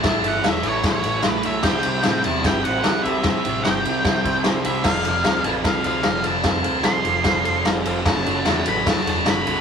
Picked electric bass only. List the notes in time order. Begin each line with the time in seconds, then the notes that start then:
0.04 A1
0.23 G1
0.43 E1
0.63 A1
0.84 A1
1.04 A1
1.24 A1
1.46 B1
1.64 C2
1.85 C2
2.06 A2
2.26 E2
2.45 G1
2.66 A1
2.85 C2
3.06 C2
3.25 C2
3.47 A1
3.65 G1
3.84 C2
4.05 C2
4.25 C2
4.45 C2
4.66 C2
4.85 F1
5.06 F1
5.25 D2
5.45 A1
5.64 C2
5.85 D2
6.05 F1
6.26 F1
6.45 F1
6.65 D2
6.85 C2
7.05 F1
7.25 F1
7.47 F1
7.65 F1
7.86 F1
8.06 F#1
8.26 F#1
8.46 E2
8.66 A1
8.87 C#2
9.07 E1
9.27 F#1
9.47 B1